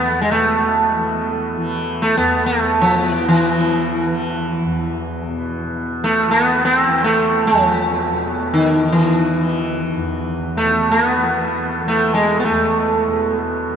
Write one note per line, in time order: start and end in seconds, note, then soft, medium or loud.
0.00 2.17 E2 soft
0.00 0.30 B2 medium
0.00 0.94 E3 medium
0.00 0.21 B3 medium
0.21 0.31 G#3 medium
0.30 2.80 B2 medium
0.30 1.28 A3 medium
0.94 1.57 E3 soft
1.57 3.41 E3 medium
2.02 2.17 A3 medium
2.17 4.65 E2 medium
2.17 2.46 B3 medium
2.46 2.81 A3 medium
2.80 5.27 B2 medium
2.80 3.10 F3 medium
3.10 3.28 E3 medium
3.29 4.44 E3 medium
3.41 4.05 E3 medium
4.05 6.25 E3 medium
4.65 7.51 E2 medium
5.28 5.64 B2 medium
5.64 8.13 B2 soft
6.04 6.30 A3 medium
6.25 6.86 E3 medium
6.31 6.65 B3 medium
6.65 6.76 B3 medium
6.76 7.04 C4 medium
6.86 8.76 E3 medium
7.04 7.44 A3 medium
7.47 8.53 F3 medium
7.51 9.96 E2 medium
8.13 10.59 B2 medium
8.54 8.92 D#3 medium
8.76 9.36 E3 soft
8.93 9.79 E3 medium
9.36 11.21 E3 medium
9.96 12.48 E2 soft
10.57 13.08 B2 medium
10.57 10.91 A3 medium
10.91 11.88 B3 medium
11.21 11.83 E3 soft
11.83 13.72 E3 medium
11.88 12.14 A3 medium
12.14 12.39 G#3 medium
12.40 12.45 B3 medium
12.45 13.76 E2 medium
12.45 13.34 A3 medium
13.08 13.76 B2 medium
13.72 13.76 E3 medium